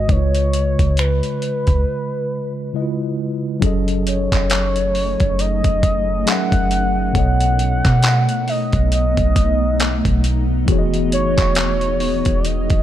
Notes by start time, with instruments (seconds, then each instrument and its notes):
Already playing: tine electric piano G#2 G#3 C5 D#5, soft synth lead D#5
0.07 808-style bass C#2, tine electric piano C#3 G#3 D#4, soft synth lead C#5, kick, closed hi-hat
0.12 tine electric piano B4 D#5
0.17 tine electric piano F4
0.35 closed hi-hat
0.53 closed hi-hat
0.79 808-style bass C#2, kick, closed hi-hat
0.97 soft synth lead B4, finger snap, closed hi-hat
1.23 closed hi-hat
1.42 closed hi-hat
1.67 808-style bass C#2, kick, closed hi-hat
2.73 tine electric piano C#3 G#3 E4 B4 D#5
2.81 tine electric piano F4
3.60 808-style bass F#1, tine electric piano F#3 C#4 G#4, ambient pad F#3 A3 D#4 G#5, kick, closed hi-hat
3.65 tine electric piano A4 D#5
3.88 closed hi-hat
4.07 soft synth lead C#5, closed hi-hat
4.32 808-style bass F#1, kick, clap, closed hi-hat
4.50 clap, closed hi-hat
4.76 closed hi-hat
4.95 open hi-hat
5.20 808-style bass F#1, kick, closed hi-hat
5.39 soft synth lead D#5, closed hi-hat
5.64 808-style bass F#1, kick, closed hi-hat
5.83 kick, closed hi-hat
6.26 tine electric piano F#3 C#4 G#4 A#4 E5, soft synth lead F#5, clap, closed hi-hat
6.52 808-style bass F#1, kick, closed hi-hat
6.71 closed hi-hat
7.12 808-style bass B1, tine electric piano B2 B3 A4, ambient pad A3 B3 D#4, kick, closed hi-hat
7.17 tine electric piano C#5 D#5, soft synth lead F#5
7.41 closed hi-hat
7.59 closed hi-hat
7.85 808-style bass B2, kick, clap, closed hi-hat
8.03 clap, closed hi-hat
8.29 closed hi-hat
8.48 soft synth lead D#5, open hi-hat
8.73 808-style bass B1, kick, closed hi-hat
8.92 soft synth lead D#5, closed hi-hat
9.17 808-style bass B1, kick, closed hi-hat
9.36 kick, closed hi-hat
9.80 clap, closed hi-hat
10.05 808-style bass B1, kick, closed hi-hat
10.24 closed hi-hat
10.66 808-style bass E1, tine electric piano E3 B3 F#4, ambient pad E3 G#4, kick, closed hi-hat
10.71 tine electric piano G#4 C#5
10.79 tine electric piano D#5
10.94 closed hi-hat
11.12 808-style bass F#1, soft synth lead C#5, closed hi-hat
11.38 808-style bass E1, kick, clap, closed hi-hat
11.55 clap, closed hi-hat
11.81 closed hi-hat
12.00 open hi-hat
12.25 808-style bass E1, kick, closed hi-hat
12.40 soft synth lead D5
12.45 soft synth lead D#5, closed hi-hat
12.70 808-style bass E1, kick, closed hi-hat